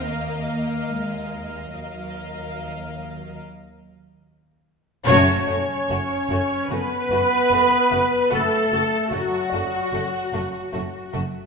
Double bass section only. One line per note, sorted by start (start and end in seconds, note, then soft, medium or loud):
0.00 1.69 D#2 soft
1.73 3.37 D#2 soft
5.07 5.45 F#1 medium
5.48 5.56 F#1 medium
5.89 5.97 F#1 medium
6.30 6.38 F#1 medium
6.70 6.78 F#1 medium
7.10 7.18 F#1 soft
7.51 7.59 F#1 medium
7.92 8.00 F#1 medium
8.32 8.40 F#1 medium
8.72 8.80 F#1 medium
9.12 9.20 F#1 medium
9.52 9.60 F#1 medium
9.93 10.01 F#1 medium
10.34 10.42 F#1 soft
10.74 10.82 F#1 medium
11.14 11.22 F#1 medium